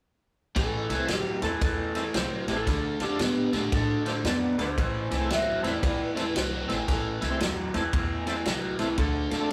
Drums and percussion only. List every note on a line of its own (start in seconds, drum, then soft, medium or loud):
0.56 kick loud
0.56 snare soft
0.56 ride medium
0.90 snare soft
0.90 ride medium
1.08 snare loud
1.08 ride medium
1.42 snare soft
1.42 ride medium
1.61 kick loud
1.61 snare soft
1.61 ride medium
1.95 snare soft
1.95 ride medium
2.14 snare loud
2.14 ride medium
2.48 snare soft
2.48 ride medium
2.67 kick medium
2.67 snare soft
2.67 ride medium
3.00 snare soft
3.00 ride medium
3.19 snare loud
3.19 ride medium
3.53 snare soft
3.53 ride medium
3.72 kick loud
3.72 snare soft
3.72 ride medium
4.06 snare soft
4.06 ride medium
4.24 snare loud
4.24 ride medium
4.59 snare soft
4.59 ride medium
4.78 kick loud
4.78 ride medium
5.11 snare soft
5.11 ride medium
5.30 snare medium
5.30 ride medium
5.64 snare soft
5.64 ride medium
5.83 kick loud
5.83 ride medium
6.17 snare soft
6.17 ride medium
6.36 snare loud
6.36 ride medium
6.69 snare soft
6.69 ride medium
6.88 kick loud
6.88 snare soft
6.88 ride medium
7.22 snare soft
7.22 ride medium
7.40 snare loud
7.40 ride medium
7.74 snare soft
7.74 ride medium
7.93 kick loud
7.93 ride medium
8.27 snare soft
8.27 ride medium
8.45 snare loud
8.45 ride medium
8.79 snare soft
8.79 ride medium
8.97 kick medium
8.97 ride medium
9.31 snare soft
9.31 ride medium